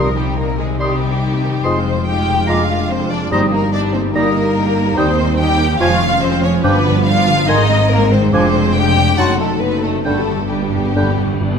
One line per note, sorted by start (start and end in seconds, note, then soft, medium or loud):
0.00 1.62 C2 soft
0.00 0.55 C3 medium
0.00 0.79 C3 soft
0.00 1.62 C3 soft
0.00 1.66 G3 soft
0.00 2.45 D#4 soft
0.00 0.16 A#4 medium
0.00 0.14 D#6 soft
0.05 0.16 G3 soft
0.05 0.16 C4 soft
0.15 0.27 D#3 soft
0.15 0.37 G3 soft
0.15 0.57 C4 soft
0.15 0.27 D#4 soft
0.15 0.38 G4 medium
0.27 0.38 G3 soft
0.27 0.38 C4 soft
0.36 0.48 D#3 soft
0.36 0.58 A#3 medium
0.36 1.22 D#4 soft
0.36 0.48 D#4 soft
0.36 0.59 A#4 medium
0.48 0.59 G3 soft
0.48 0.59 C4 soft
0.59 0.70 D#3 soft
0.59 0.80 G#3 soft
0.59 0.70 D#4 soft
0.59 0.81 G#4 medium
0.70 0.81 G3 soft
0.70 0.81 C4 soft
0.79 1.67 C3 soft
0.79 0.91 D#3 soft
0.79 0.95 G3 soft
0.79 1.63 G3 medium
0.79 0.90 D#4 soft
0.79 0.95 G4 soft
0.79 1.63 G4 medium
0.79 0.95 C6 soft
0.79 1.00 D#6 soft
0.92 1.02 G3 soft
0.92 1.02 C4 soft
1.01 1.13 D#3 soft
1.01 1.67 G3 soft
1.01 1.13 D#4 soft
1.13 1.23 G3 soft
1.13 1.23 C4 soft
1.23 1.33 D#3 soft
1.23 2.50 D#4 soft
1.23 1.33 D#4 soft
1.35 1.45 G3 soft
1.35 1.45 C4 soft
1.44 1.55 D#3 soft
1.44 2.51 C4 soft
1.44 1.55 D#4 soft
1.55 1.65 G3 soft
1.55 1.65 C4 soft
1.64 3.29 F1 soft
1.64 3.28 F2 medium
1.64 2.47 F2 medium
1.64 1.76 F3 soft
1.64 1.80 G#3 soft
1.64 3.32 G#3 soft
1.64 2.07 C4 medium
1.64 1.76 D#4 soft
1.64 1.79 F4 medium
1.64 2.07 C5 medium
1.64 1.79 C6 soft
1.64 1.84 D#6 soft
1.77 1.87 G#3 soft
1.77 1.87 F4 soft
1.86 2.26 C3 soft
1.86 1.97 F3 soft
1.86 1.97 D#4 soft
1.97 2.07 G#3 soft
1.97 2.08 F4 soft
2.06 2.18 F3 soft
2.06 2.17 D#4 soft
2.06 3.33 F4 soft
2.06 2.48 G4 medium
2.06 2.48 G5 medium
2.18 2.28 G#3 soft
2.18 2.28 F4 soft
2.27 2.50 C3 soft
2.27 2.39 F3 soft
2.27 2.39 D#4 soft
2.40 2.50 G#3 soft
2.40 2.49 F4 soft
2.47 3.33 F2 medium
2.47 2.63 G#3 medium
2.47 2.59 A#3 soft
2.47 2.59 D4 soft
2.47 2.63 F4 medium
2.47 2.89 F4 medium
2.47 2.91 F5 medium
2.47 2.62 A#5 medium
2.47 2.68 D6 medium
2.59 2.70 G#3 soft
2.59 2.70 F4 soft
2.69 3.09 F3 soft
2.69 2.81 A#3 soft
2.69 2.80 D4 soft
2.81 2.91 G#3 soft
2.81 2.91 F4 soft
2.90 3.01 A#3 soft
2.90 3.11 C4 medium
2.90 3.01 D4 soft
2.90 3.34 G#4 soft
2.90 3.11 C5 medium
3.01 3.11 G#3 soft
3.01 3.11 F4 soft
3.11 3.33 F3 soft
3.11 3.22 A#3 soft
3.11 3.31 D4 medium
3.11 3.22 D4 soft
3.11 3.32 D5 medium
3.23 3.33 G#3 soft
3.23 3.33 F4 soft
3.31 4.95 G1 medium
3.31 4.13 G2 medium
3.31 3.90 G2 medium
3.31 4.95 G2 medium
3.31 3.46 G3 medium
3.31 4.95 G3 medium
3.31 3.42 A#3 medium
3.31 3.52 C4 medium
3.31 4.97 D#4 medium
3.31 3.42 D#4 soft
3.31 3.47 D#4 medium
3.31 3.40 C5 medium
3.31 3.47 A#5 medium
3.31 3.51 D#6 medium
3.42 3.52 G3 soft
3.42 3.53 G4 soft
3.52 3.93 G3 soft
3.52 3.73 A#3 medium
3.52 3.63 A#3 soft
3.52 3.63 D#4 soft
3.52 3.73 A#4 medium
3.63 3.74 G3 soft
3.63 3.73 G4 soft
3.72 3.83 A#3 soft
3.72 3.93 D4 medium
3.72 3.83 D#4 medium
3.72 4.55 G4 soft
3.72 3.81 D5 medium
3.83 3.94 G3 soft
3.83 3.94 G4 soft
3.93 4.75 G3 soft
3.93 4.04 A#3 soft
3.93 4.14 C4 medium
3.93 4.04 D#4 soft
3.93 4.02 C5 medium
4.04 4.15 G3 soft
4.04 4.15 G4 soft
4.14 4.99 G2 medium
4.14 4.30 G3 medium
4.14 4.96 A#3 medium
4.14 4.24 A#3 medium
4.14 4.24 D#4 medium
4.14 4.30 D#4 medium
4.14 4.96 A#4 medium
4.14 4.30 A#5 medium
4.14 4.34 D#6 medium
4.25 4.35 G3 soft
4.25 4.36 G4 soft
4.35 4.46 A#3 medium
4.35 4.99 A#3 soft
4.35 4.46 D#4 soft
4.45 4.56 G3 soft
4.45 4.56 G4 soft
4.55 4.66 A#3 soft
4.55 4.66 D#4 soft
4.55 5.38 G4 medium
4.66 4.77 G3 soft
4.66 4.77 G4 soft
4.76 5.82 G3 soft
4.76 4.87 A#3 medium
4.76 4.88 D#4 medium
4.87 4.98 G3 soft
4.87 4.98 G4 medium
4.97 5.81 D#2 medium
4.97 5.07 D#3 medium
4.97 5.82 D#3 medium
4.97 5.12 G3 medium
4.97 5.63 G3 medium
4.97 5.39 C4 medium
4.97 5.12 D#4 medium
4.97 5.07 D#4 medium
4.97 5.63 D#4 medium
4.97 5.40 C5 medium
4.97 5.12 G5 medium
4.97 5.17 D#6 medium
5.08 5.19 G3 soft
5.08 5.19 C4 soft
5.18 5.29 D#3 medium
5.18 5.29 D#4 medium
5.18 5.58 D#4 soft
5.29 5.39 G3 soft
5.29 5.39 C4 medium
5.39 5.49 D#3 medium
5.39 5.49 D#4 medium
5.39 5.81 G4 medium
5.39 5.83 G4 medium
5.39 5.80 G5 medium
5.50 5.60 G3 medium
5.50 5.60 C4 medium
5.59 5.70 D#3 medium
5.59 5.70 D#4 soft
5.59 5.82 D#4 soft
5.70 5.81 G3 medium
5.70 5.81 C4 medium
5.80 6.62 F1 medium
5.80 6.62 F2 medium
5.80 6.66 F2 medium
5.80 7.44 F3 medium
5.80 5.95 F3 medium
5.80 5.90 F3 medium
5.80 6.60 C#4 medium
5.80 5.90 C#4 medium
5.80 5.95 F4 medium
5.80 6.22 F4 medium
5.80 6.21 F5 loud
5.80 5.96 G#5 medium
5.80 6.00 C#6 medium
5.90 6.01 G#3 medium
5.90 6.01 F4 medium
6.01 6.12 F3 medium
6.01 6.42 F3 soft
6.01 6.11 C#4 medium
6.10 6.21 G#3 medium
6.10 6.21 F4 medium
6.21 6.32 F3 medium
6.21 6.42 C4 medium
6.21 6.32 C#4 medium
6.21 7.05 F4 medium
6.21 6.43 C5 loud
6.32 6.43 G#3 medium
6.32 6.43 F4 medium
6.42 7.50 F3 medium
6.42 6.54 F3 medium
6.42 6.64 C#4 medium
6.42 6.54 C#4 medium
6.42 6.64 C#5 medium
6.54 6.64 G#3 medium
6.54 6.65 F4 medium
6.62 7.46 G1 medium
6.62 7.23 G2 medium
6.62 7.50 G2 medium
6.62 7.47 G2 medium
6.62 6.79 F3 medium
6.62 6.75 G3 medium
6.62 7.06 B3 medium
6.62 7.43 D4 medium
6.62 6.79 D4 medium
6.62 6.75 D4 medium
6.62 7.05 B4 medium
6.62 6.79 G5 medium
6.62 6.84 D6 medium
6.74 6.85 F3 medium
6.74 6.85 B3 medium
6.85 7.27 D3 medium
6.85 6.96 G3 medium
6.85 6.96 D4 medium
6.96 7.07 F3 medium
6.96 7.07 B3 medium
7.06 7.16 G3 medium
7.06 7.16 D4 medium
7.06 7.48 F4 medium
7.06 7.50 F4 medium
7.06 7.47 F5 loud
7.17 7.28 F3 medium
7.17 7.28 B3 medium
7.27 7.50 D3 medium
7.27 7.38 G3 medium
7.27 7.38 D4 medium
7.38 7.48 F3 medium
7.38 7.48 B3 medium
7.45 8.32 G#1 medium
7.45 8.32 G#2 medium
7.45 8.35 G#2 medium
7.45 7.58 D#3 medium
7.45 7.63 D#3 medium
7.45 9.14 G#3 medium
7.45 8.29 C4 medium
7.45 7.58 C4 medium
7.45 7.61 D#4 medium
7.45 7.89 D#4 medium
7.45 7.91 D#5 loud
7.45 7.64 G#5 medium
7.45 7.68 C6 medium
7.57 7.69 G#3 medium
7.57 7.69 D#4 medium
7.69 7.80 D#3 medium
7.69 8.11 D#3 medium
7.69 7.80 C4 medium
7.79 7.91 G#3 medium
7.79 7.90 D#4 medium
7.90 8.01 D#3 medium
7.90 8.11 A#3 medium
7.90 8.01 C4 medium
7.90 8.35 D#4 medium
7.90 8.12 A#4 loud
8.00 8.12 G#3 medium
8.00 8.12 D#4 medium
8.11 8.35 D#3 medium
8.11 8.23 D#3 medium
8.11 8.31 C4 medium
8.11 8.23 C4 medium
8.11 8.32 C5 medium
8.23 8.34 G#3 medium
8.23 8.33 D#4 medium
8.32 9.18 F1 medium
8.32 9.18 F2 medium
8.32 9.20 F2 medium
8.32 8.43 F3 medium
8.32 8.48 F3 medium
8.32 8.75 C4 medium
8.32 8.48 D4 medium
8.32 8.43 D4 medium
8.32 9.15 D4 medium
8.32 8.75 C5 medium
8.32 8.49 G#5 medium
8.32 8.53 D6 medium
8.44 8.55 G#3 soft
8.44 8.55 C4 medium
8.54 8.96 C3 soft
8.54 8.65 F3 medium
8.54 8.65 D4 medium
8.65 8.76 G#3 medium
8.65 8.76 C4 medium
8.75 8.86 F3 medium
8.75 9.20 D4 medium
8.75 8.86 D4 medium
8.75 9.18 G4 medium
8.75 9.18 G5 loud
8.86 8.97 G#3 medium
8.86 8.97 C4 medium
8.97 9.20 C3 soft
8.97 9.08 F3 soft
8.97 9.08 D4 soft
9.08 9.19 G#3 soft
9.08 9.19 C4 soft
9.17 10.04 F#1 medium
9.17 10.04 F#2 medium
9.17 10.08 F#2 medium
9.17 9.33 F#3 medium
9.17 9.29 F#3 medium
9.17 10.02 A3 medium
9.17 9.32 D#4 medium
9.17 9.28 D#4 medium
9.17 10.02 D#4 medium
9.17 9.40 F#4 medium
9.17 9.40 F#5 medium
9.17 9.33 A5 medium
9.17 9.39 C6 medium
9.28 9.40 A3 soft
9.28 9.40 C4 soft
9.39 9.82 F#3 soft
9.39 9.51 F#3 soft
9.39 9.48 A3 medium
9.39 9.51 D#4 soft
9.39 9.61 A4 medium
9.51 9.62 A3 soft
9.51 9.62 C4 soft
9.60 9.72 F#3 soft
9.60 9.83 B3 medium
9.60 10.08 D#4 soft
9.60 9.72 D#4 soft
9.60 9.83 B4 medium
9.73 9.84 A3 soft
9.73 9.84 C4 soft
9.82 10.08 F#3 soft
9.82 9.95 F#3 soft
9.82 10.04 A3 medium
9.82 9.95 D#4 soft
9.82 10.04 A4 medium
9.96 10.07 A3 soft
9.96 10.07 C4 soft
10.05 11.59 G1 medium
10.05 10.95 G2 medium
10.05 11.59 G2 medium
10.05 10.11 G2 soft
10.05 10.22 D3 medium
10.05 10.17 G3 soft
10.05 10.50 A3 medium
10.05 11.59 B3 medium
10.05 11.59 D4 medium
10.05 10.22 D4 soft
10.05 10.17 D4 soft
10.05 10.50 A4 medium
10.05 10.21 G5 medium
10.05 10.27 B5 medium
10.12 10.19 G2 soft
10.18 10.29 B3 soft
10.18 10.29 G4 soft
10.28 10.35 G2 soft
10.28 10.73 D3 soft
10.28 10.40 G3 soft
10.28 10.40 D4 soft
10.37 10.43 G2 soft
10.37 10.51 B3 soft
10.37 10.51 G4 soft
10.45 10.52 G2 soft
10.50 10.59 G2 soft
10.50 10.62 G3 soft
10.50 11.59 G3 soft
10.50 10.62 D4 soft
10.50 11.40 D4 soft
10.50 11.59 G4 medium
10.61 10.67 G2 soft
10.61 10.73 B3 soft
10.61 10.73 G4 soft
10.69 10.76 G2 soft
10.69 10.84 G3 soft
10.69 10.84 D4 soft
10.74 10.84 G2 soft
10.74 11.59 D3 soft
10.84 10.92 G2 soft
10.84 10.96 B3 soft
10.84 10.96 G4 soft
10.93 11.00 G2 soft
10.93 11.59 G2 soft
10.93 11.12 D3 medium
10.93 11.06 G3 soft
10.93 11.11 D4 soft
10.93 11.06 D4 soft
10.93 11.12 G5 medium
10.93 11.17 B5 soft
11.02 11.08 G2 soft
11.08 11.16 G2 medium
11.08 11.19 B3 soft
11.08 11.19 G4 soft
11.17 11.24 G2 medium
11.17 11.59 G3 soft
11.17 11.31 G3 soft
11.17 11.30 D4 soft
11.25 11.32 G2 medium
11.31 11.40 G2 medium
11.31 11.42 B3 soft
11.31 11.42 G4 soft
11.41 11.47 G2 medium
11.41 11.53 G3 soft
11.41 11.59 D4 soft
11.41 11.52 D4 soft
11.49 11.56 G2 medium
11.54 11.59 B3 soft
11.54 11.59 G4 soft